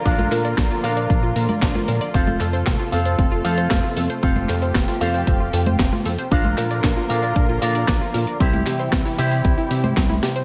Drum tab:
HH |xxoxxooxx-oxx-ox|xxoxx-oxx-oxx-ox|xxoxxooxx-oxx-ox|xxoxx-oxx-oxx-ox|
TB |x-xxx-xxx-xxxxxx|x-xxx-xxx-xxxxxx|x-xxx-xxx-xxxxxx|x-xxx-xxx-xxxxxx|
CP |--x-x-------x---|--x-x-------x---|--x-x-------x---|--x-x-------x---|
SD |----o-------o---|----o-------o---|----o-------o---|----o-------o---|
CG |-o---------o-o--|-o--------------|-o---------o-o--|-o--------------|
BD |o---o---o---o---|o---o---o---o---|o---o---o---o---|o---o---o---o---|

HH |xxoxxooxxxoxx-ox|
TB |xxxxx-xxx-xxxxxx|
CP |--x-x-------x---|
SD |----o-------o-o-|
CG |-o---------o-o--|
BD |o---o---o---o---|